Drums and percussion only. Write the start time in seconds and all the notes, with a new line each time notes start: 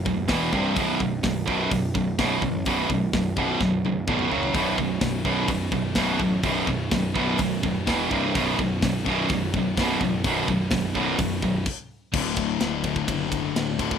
0.06 kick
0.28 kick, snare, open hi-hat
0.53 kick
0.76 kick, open hi-hat
1.00 kick
1.23 kick, snare, open hi-hat
1.48 kick
1.71 kick, open hi-hat
1.95 kick
2.19 kick, snare, open hi-hat
2.42 kick
2.65 kick, open hi-hat
2.90 kick
3.13 kick, snare, open hi-hat
3.37 kick
3.61 kick, snare
3.85 high tom
4.07 kick, mid tom
4.19 mid tom
4.32 floor tom
4.43 floor tom
4.54 kick, open hi-hat
4.78 kick
5.01 kick, snare, open hi-hat
5.25 kick
5.48 kick, open hi-hat
5.72 kick
5.95 kick, snare, open hi-hat
6.20 kick
6.43 kick, open hi-hat
6.67 kick
6.91 kick, snare, open hi-hat
7.16 kick
7.38 kick, open hi-hat
7.63 kick
7.87 kick, snare, open hi-hat
8.11 kick
8.35 kick, open hi-hat
8.59 kick
8.82 kick, snare, open hi-hat
9.06 kick
9.29 kick, open hi-hat
9.54 kick
9.77 kick, snare, open hi-hat
10.01 kick
10.24 kick, open hi-hat
10.48 kick
10.70 kick, snare, open hi-hat
10.95 kick
11.18 kick, open hi-hat
11.42 kick
11.66 kick, crash
12.13 kick, crash
12.36 kick, ride
12.61 snare, ride
12.84 kick, ride
12.96 kick
13.08 kick, ride
13.32 kick, ride
13.56 snare, ride
13.79 kick, ride
13.91 kick